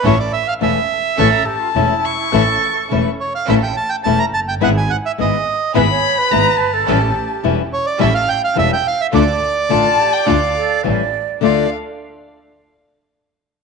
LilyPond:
<<
  \new Staff \with { instrumentName = "Violin" } { \time 4/4 \key d \minor \tempo 4 = 106 r2 cis'''16 bes''16 a''4 cis'''8~ | cis'''4~ cis'''16 r2 r8. | r2 b''4 bes''8 a''8~ | a''4~ a''16 r2 r8. |
r4 a''8. g''16 f''4 r4 | f''8 r2. r8 | }
  \new Staff \with { instrumentName = "Bandoneon" } { \time 4/4 \key d \minor cis''16 d''16 e''16 f''16 e''4. r4. | r4. cis''16 f''16 e''16 g''16 a''16 g''16 a''16 bes''16 a''16 g''16 | fis''16 gis''16 fis''16 e''16 ees''4 r2 | r4. cis''16 d''16 e''16 f''16 g''16 f''16 e''16 g''16 f''16 e''16 |
d''2. r4 | d''8 r2. r8 | }
  \new Staff \with { instrumentName = "Flute" } { \time 4/4 \key d \minor r2 a'8 g'16 f'16 e'4 | a'4~ a'16 r2 r8. | r2 b'16 cis''8 b'4 a'16~ | a'16 g'4 r2 r8. |
r4 f'8 g'8 f'8 a'8 d''4 | f''8 r2. r8 | }
  \new Staff \with { instrumentName = "String section" } { \time 4/4 \key d \minor <cis' e' a'>8 r8 <cis' e' a'>8 r8 <cis' e' a'>8 r8 <cis' e' a'>8 r8 | <cis' e' a'>8 r8 <cis' e' a'>8 r8 <cis' e' a'>8 r8 <cis' e' a'>8 r8 | <b e' gis'>8 r8 <b e' gis'>8 r8 <b e' gis'>8 r8 <b e' gis'>8 r8 | <cis' g' a'>8 r8 <cis' g' a'>8 r8 <cis' g' a'>8 r8 <cis' g' a'>8 r8 |
<d' f' a'>8 r8 <d' f' a'>8 r8 <d' f' a'>8 r8 <cis' g' a'>8 r8 | <d' f' a'>8 r2. r8 | }
  \new Staff \with { instrumentName = "Nylon-string guitar" } { \time 4/4 \key d \minor <e a cis' e'>8 r8 <e a cis' e'>8 r8 <e a cis' e'>8 r8 <e a cis' e'>8 r8 | <e a cis' e'>8 r8 <e a cis' e'>8 r8 <e a cis' e'>8 r8 <e a cis' e'>8 r8 | <gis b e'>8 r8 <gis b e'>8 r8 <gis b e'>8 r8 <gis b e'>8 r8 | <e g cis' e'>8 r8 <e g cis' e'>8 r8 <e g cis' e'>8 r8 <e g cis' e'>8 r8 |
<d a d' f'>8 r8 <d a d' f'>8 r8 <d a d' f'>8 r8 <e g cis' e'>8 r8 | <d a d' f'>8 r2. r8 | }
  \new Staff \with { instrumentName = "Double bass" } { \clef bass \time 4/4 \key d \minor a,,8 r8 e,,8 r8 a,,8 r8 e,,8 r8 | a,,8 r8 e,,8 r8 a,,8 r8 e,,8 fis,,8 | gis,,8 r8 gis,,8 r8 gis,,8 r8 gis,,8 g,,8 | a,,8 r8 e,,8 r8 a,,8 r8 e,,8 r8 |
d,8 r8 a,,8 r8 d,8 r8 a,,8 r8 | d,8 r2. r8 | }
>>